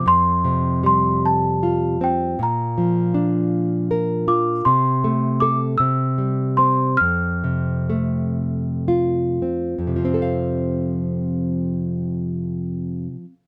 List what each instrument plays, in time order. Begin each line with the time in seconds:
0.06 nylon-string guitar F2, celesta C6
0.44 nylon-string guitar C3
0.83 nylon-string guitar G3, celesta C6
1.26 celesta A5
1.63 nylon-string guitar F4
2.01 nylon-string guitar C4, celesta G5
2.39 nylon-string guitar A#2, celesta A#5
2.78 nylon-string guitar F3
3.14 nylon-string guitar D4
3.91 nylon-string guitar A#4
4.28 nylon-string guitar F4, celesta D6
4.65 nylon-string guitar C3, celesta C6
5.04 nylon-string guitar A3
5.40 nylon-string guitar A4, celesta D6
5.78 nylon-string guitar C3, celesta E6
6.18 nylon-string guitar G3
6.57 nylon-string guitar C4, celesta C6
6.97 nylon-string guitar F2, celesta F6
7.44 nylon-string guitar C3
7.90 nylon-string guitar A3
8.88 nylon-string guitar F4
9.42 nylon-string guitar C4
9.78 nylon-string guitar F2
9.87 nylon-string guitar C3
9.96 nylon-string guitar F3
10.05 nylon-string guitar C4
10.14 nylon-string guitar A4
10.22 nylon-string guitar F5